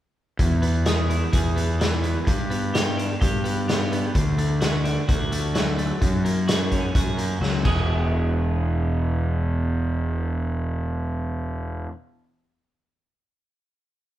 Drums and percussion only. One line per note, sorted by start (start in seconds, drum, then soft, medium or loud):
0.39 kick medium
0.39 closed hi-hat medium
0.63 closed hi-hat medium
0.86 snare loud
0.86 closed hi-hat medium
1.10 closed hi-hat soft
1.33 kick loud
1.33 closed hi-hat medium
1.58 closed hi-hat medium
1.81 snare medium
1.81 closed hi-hat medium
2.04 closed hi-hat medium
2.27 kick medium
2.27 closed hi-hat medium
2.51 closed hi-hat medium
2.75 snare medium
2.75 closed hi-hat medium
2.99 closed hi-hat medium
3.22 kick medium
3.22 closed hi-hat medium
3.45 closed hi-hat soft
3.69 snare medium
3.69 closed hi-hat medium
3.93 closed hi-hat soft
4.15 kick medium
4.15 closed hi-hat medium
4.38 closed hi-hat medium
4.61 snare medium
4.61 closed hi-hat medium
4.85 closed hi-hat medium
5.09 kick medium
5.09 closed hi-hat medium
5.32 closed hi-hat medium
5.55 snare medium
5.55 closed hi-hat medium
5.79 closed hi-hat medium
6.02 kick medium
6.02 closed hi-hat medium
6.26 closed hi-hat medium
6.48 snare loud
6.48 closed hi-hat medium
6.72 kick medium
6.72 closed hi-hat soft
6.95 kick loud
6.95 closed hi-hat medium
7.19 closed hi-hat medium
7.42 snare soft
7.65 kick medium
7.65 crash medium